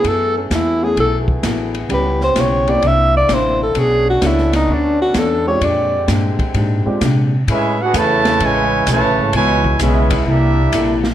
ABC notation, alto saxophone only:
X:1
M:4/4
L:1/8
Q:"Swing" 1/4=129
K:A
V:1 name="Alto saxophone"
A C E G A z3 | B =c ^c d e d =c A | G F E ^D =D F A c | d2 z6 |
z8 | z8 |]